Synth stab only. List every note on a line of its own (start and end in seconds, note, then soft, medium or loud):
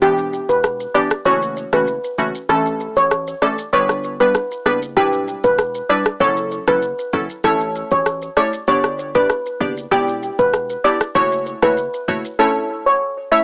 0.02 0.59 E3 medium
0.02 0.59 B3 medium
0.02 0.59 D4 medium
0.02 0.59 G4 loud
0.94 1.09 E3 medium
0.94 1.09 B3 medium
0.94 1.09 D4 medium
0.94 1.09 G4 medium
1.25 1.69 E3 medium
1.25 1.69 A3 medium
1.25 1.69 C#4 medium
1.25 1.69 F#4 loud
1.73 1.85 E3 medium
1.73 1.85 A3 medium
1.73 1.85 C#4 medium
1.73 1.86 F#4 medium
2.18 2.32 E3 medium
2.18 2.32 A3 medium
2.18 2.33 C#4 medium
2.18 2.33 F#4 medium
2.49 3.06 E3 loud
2.49 3.06 A3 medium
2.49 3.07 C#4 medium
2.49 3.07 A4 loud
3.42 3.56 E3 medium
3.42 3.56 A3 medium
3.42 3.56 C#4 medium
3.42 3.56 A4 medium
3.73 4.16 G3 medium
3.73 4.16 B3 medium
3.73 4.16 D4 medium
3.73 4.17 B4 loud
4.20 4.33 G3 medium
4.20 4.33 B3 medium
4.20 4.33 D4 medium
4.20 4.33 B4 medium
4.66 4.80 G3 medium
4.66 4.80 B3 medium
4.66 4.80 D4 medium
4.66 4.80 B4 medium
4.97 5.54 G3 loud
4.97 5.54 D4 medium
4.97 5.54 E4 medium
4.97 5.54 B4 loud
5.89 6.03 G3 medium
5.89 6.04 D4 medium
5.89 6.04 E4 medium
5.89 6.04 B4 medium
6.20 6.64 F#3 medium
6.20 6.64 C#4 medium
6.20 6.64 E4 medium
6.20 6.64 A4 loud
6.68 6.80 F#3 medium
6.68 6.80 C#4 medium
6.68 6.80 E4 medium
6.68 6.80 A4 medium
7.13 7.27 F#3 medium
7.13 7.27 C#4 medium
7.13 7.27 E4 medium
7.13 7.28 A4 medium
7.44 8.01 A3 medium
7.44 8.01 C#4 medium
7.44 8.01 E4 medium
7.44 8.02 C#5 loud
8.37 8.51 A3 medium
8.37 8.51 C#4 medium
8.37 8.51 E4 medium
8.37 8.51 C#5 medium
8.68 9.11 B3 medium
8.68 9.11 D4 medium
8.68 9.11 G4 medium
8.68 9.11 D5 loud
9.15 9.28 B3 medium
9.15 9.28 D4 medium
9.15 9.28 G4 medium
9.15 9.28 D5 medium
9.60 9.75 B3 medium
9.60 9.75 D4 medium
9.60 9.75 G4 medium
9.60 9.75 D5 medium
9.91 10.49 B3 medium
9.91 10.49 E4 medium
9.91 10.49 G4 medium
9.91 10.49 D5 loud
10.84 10.98 B3 medium
10.84 10.98 E4 medium
10.84 10.99 G4 medium
10.84 10.99 D5 medium
11.15 11.59 A3 medium
11.15 11.59 E4 medium
11.15 11.59 F#4 medium
11.15 11.59 C#5 loud
11.62 11.75 A3 medium
11.62 11.75 E4 medium
11.62 11.75 F#4 medium
11.62 11.75 C#5 medium
12.08 12.22 A3 medium
12.08 12.22 E4 medium
12.08 12.22 F#4 medium
12.08 12.22 C#5 medium
12.39 12.96 A3 medium
12.39 12.96 C#4 medium
12.39 12.96 E4 medium
12.39 12.96 C#5 loud
13.31 13.44 A3 medium
13.31 13.44 C#4 medium
13.31 13.44 E4 medium
13.31 13.44 C#5 medium